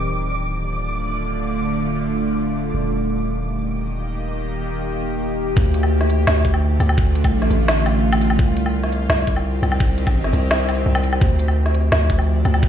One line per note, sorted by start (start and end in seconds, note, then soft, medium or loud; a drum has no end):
0.00 2.73 D1 medium
0.00 2.74 D3 medium
0.00 0.35 C4 medium
0.00 0.42 G4 medium
0.00 5.57 D6 medium
0.06 2.74 A3 medium
0.06 2.74 D5 medium
0.20 3.87 F4 medium
2.74 5.55 D#1 medium
2.74 5.57 D#3 medium
2.90 6.20 G4 medium
3.02 5.57 A#3 medium
3.28 5.57 D#5 medium
5.56 6.26 D2 loud
5.56 8.39 D3 loud
5.56 kick loud
5.68 8.39 A3 medium
5.74 closed hi-hat medium
5.83 9.08 F4 medium
5.83 low woodblock soft
6.01 snare soft
6.10 closed hi-hat medium
6.20 8.39 D5 medium
6.27 6.79 D2 loud
6.27 snare loud
6.45 kick medium
6.45 closed hi-hat medium
6.54 low woodblock soft
6.80 7.49 D2 loud
6.80 closed hi-hat medium
6.80 low woodblock soft
6.89 low woodblock medium
6.98 kick loud
7.15 closed hi-hat medium
7.24 kick medium
7.24 low woodblock soft
7.42 snare soft
7.50 8.37 A1 loud
7.50 closed hi-hat medium
7.68 snare loud
7.86 closed hi-hat medium
7.86 low woodblock soft
8.13 low woodblock medium
8.21 closed hi-hat medium
8.30 low woodblock medium
8.39 9.08 C2 loud
8.39 11.21 D#3 medium
8.39 kick loud
8.45 12.09 C4 medium
8.57 closed hi-hat medium
8.66 low woodblock soft
8.73 11.85 G4 medium
8.84 snare soft
8.92 closed hi-hat medium
9.09 9.61 C2 medium
9.09 snare loud
9.20 11.21 D#5 loud
9.27 kick medium
9.27 closed hi-hat medium
9.36 low woodblock soft
9.63 10.32 C2 loud
9.63 closed hi-hat medium
9.63 low woodblock soft
9.72 low woodblock medium
9.80 kick loud
9.98 closed hi-hat medium
10.07 kick medium
10.07 low woodblock soft
10.24 snare soft
10.33 10.85 C2 loud
10.33 closed hi-hat medium
10.51 snare loud
10.69 closed hi-hat medium
10.69 low woodblock soft
10.86 11.20 C2 loud
10.95 low woodblock medium
11.04 closed hi-hat medium
11.13 low woodblock soft
11.21 11.91 D2 loud
11.21 12.69 F3 medium
11.21 kick loud
11.39 closed hi-hat medium
11.45 12.69 D4 medium
11.45 low woodblock soft
11.57 12.69 D5 medium
11.66 snare soft
11.71 12.69 A4 medium
11.71 closed hi-hat medium
11.92 12.44 D2 loud
11.92 snare loud
12.10 kick medium
12.10 closed hi-hat medium
12.19 low woodblock soft
12.45 12.69 D2 loud
12.45 closed hi-hat medium
12.45 low woodblock soft
12.54 low woodblock medium
12.63 kick loud